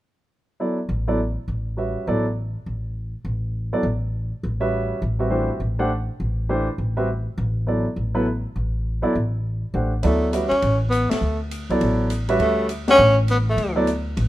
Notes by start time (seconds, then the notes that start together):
0.60 F#3 B3 E4 A4 D5
0.89 A1
1.08 F#3 B3 E4 A4 D5
1.48 A1
1.77 G3 C#4 F#4 B4 E5
2.07 A1 F#3 B3 E4 A4 D5
2.66 A1
3.25 A1
3.73 F#3 B3 E4 A4 D5
3.83 A1
4.43 A1
4.60 G3 C#4 F#4 B4 E5
5.02 A1
5.19 G3 C4 F#4 B4 E5
5.30 E3 A3 D4 G4 C5
5.60 A1
5.79 A3 D4 G4 C5 F#5
6.20 A1
6.49 E3 A3 D4 G4 C5
6.78 A1
6.97 G3 C4 F#4 B4 E5
7.38 A1
7.67 F#3 B3 E4 A4 D5
7.96 A1
8.15 F#3 B3 E4 A4 B4
8.56 A1
9.02 F#3 B3 E4 A4 D5
9.15 A1
9.74 A1 A3 D4 G4 C5 F#5
10.03 D2 F#3 A3 B3 E4 A4 D5, ride
10.33 G3 C#4 F#4 B4 E5, hi-hat pedal, ride
10.49 C#4, muted upright bass stroke, ride
10.62 A1, ride
10.90 B3, hi-hat pedal, ride
11.10 A3, muted upright bass stroke, snare, ride
11.21 D2
11.51 hi-hat pedal, ride
11.70 C#2 F#3 B3 E4 A4 D5, ride
11.81 A1, ride
12.10 hi-hat pedal, ride
12.29 G3 C#4 F#4 B4 E5, ride
12.39 D2 A3, ride
12.69 hi-hat pedal, ride
12.88 A3 C#4 D4 G4 C#5 F#5, snare, ride
12.99 A1
13.28 B3, hi-hat pedal, ride
13.50 A3
13.57 D2, ride
13.76 F#3 B3 E4 A4 D5
13.87 hi-hat pedal, ride
14.17 A1, ride